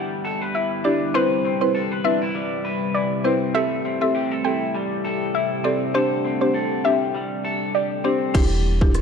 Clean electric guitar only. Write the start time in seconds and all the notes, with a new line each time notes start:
Already playing: E3 G3 E4 B4
0.25 A4
0.41 B4
0.55 E4
0.85 D4
1.15 C3 B4
1.45 C4
1.75 A4
1.91 B4
2.05 D4
2.22 E4
2.35 G3
2.65 B4
2.95 E4
3.25 C4
3.55 A2 A4
3.85 C4
4.15 G4
4.31 A4
4.45 E4
4.75 G3
5.05 A4
5.35 E4
5.65 C4
5.94 D3 A4
6.25 C4
6.54 A4
6.85 G4
7.15 G3
7.45 A4
7.75 G4
8.05 C4